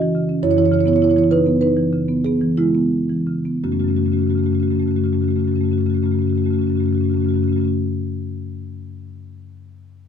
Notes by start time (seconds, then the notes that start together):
Already playing: F#2 C#4 F#4 D#5
0.02 E3
0.15 C#3
0.29 C#4
0.43 F#2 E4 C#5
0.50 E4 C#5
0.57 E3 E4 C#5
0.65 E4 C#5
0.71 C#3 E4 C#5
0.79 E4 C#5
0.86 B3 E4 C#5
0.93 E4 C#5
1.02 E4 C#5
1.10 E4 C#5
1.17 E3 E4 C#5
1.24 E4
1.31 C#3 D#4 B4
1.47 B3
1.61 D#4 B4
1.77 E3
1.93 C#3
2.09 B3
2.25 B3 G#4
2.41 E3
2.57 C#3 G#3 E4
2.75 B3
3.09 E3
3.27 C#3
3.45 B3
3.64 F#2 C#3 A3 C#4 F#4
3.72 F#2 C#3 A3 C#4 F#4
3.80 C#3 A3 C#4 F#4
3.85 F#2 C#4 F#4
3.90 C#3 A3
3.95 F#2 A3 C#4 F#4
4.00 C#3
4.04 F#2 C#3 A3 C#4 F#4
4.12 A3 C#4 F#4
4.17 F#2 C#3 C#4
4.22 A3 F#4
4.26 F#2 C#3 C#4 F#4
4.31 A3
4.35 C#3 A3 C#4 F#4
4.41 F#2 C#3 C#4
4.46 A3 F#4
4.51 F#2 C#3 A3 C#4 F#4
4.60 F#2 C#3 A3 C#4 F#4
4.68 F#2 C#3 A3 C#4
4.72 C#4 F#4
4.78 F#2 C#3 A3 C#4 F#4
4.86 C#3 A3 F#4
4.91 F#2 C#4
4.95 C#3 A3 C#4 F#4
5.02 F#2 C#3 A3 C#4 F#4
5.13 F#2 C#3 A3 C#4 F#4
5.20 C#3 A3 C#4 F#4
5.24 F#2 A3
5.29 C#3 C#4 F#4
5.36 F#2 C#3 A3 F#4
5.40 C#4
5.44 F#2 C#3 A3 C#4 F#4
5.52 C#3 A3 C#4
5.57 F#2 A3 F#4
5.64 C#3 C#4 F#4
5.68 F#2 C#3 A3 C#4
5.73 F#4
5.78 F#2 C#3 A3 C#4 F#4
5.86 C#3 A3 C#4 F#4
5.91 F#2 A3 C#4
5.96 C#3 F#4
6.02 F#2 A3 C#4 F#4
6.06 C#3
6.11 F#2 A3 C#4 F#4
6.16 C#3 C#4
6.20 C#3 A3 F#4
6.25 F#2 C#4
6.29 C#3 A3 F#4
6.36 F#2 A3 C#4 F#4
6.42 C#3 C#4 F#4
6.46 F#2 A3
6.50 C#3 C#4 F#4
6.54 A3
6.59 F#2 C#3 C#4 F#4
6.64 C#3 A3 C#4
6.69 F#2 A3 F#4
6.75 C#3 C#4 F#4
6.80 F#2 A3 C#4
6.84 C#3 A3 F#4
6.91 F#2 C#3 C#4
6.95 A3 F#4
7.01 F#2 C#3 C#4 F#4
7.06 A3 C#4
7.10 F#2 C#3 F#4
7.14 C#3 A3 C#4
7.20 A3 F#4
7.25 F#2 C#3 C#4
7.29 A3 F#4
7.34 F#2 C#3 C#4 F#4
7.39 C#3 A3 C#4
7.44 F#2 F#4
7.48 A3 C#4
7.52 C#3 F#4
7.56 F#2 A3 C#4
7.60 C#3 F#4
7.64 A3 C#4 F#4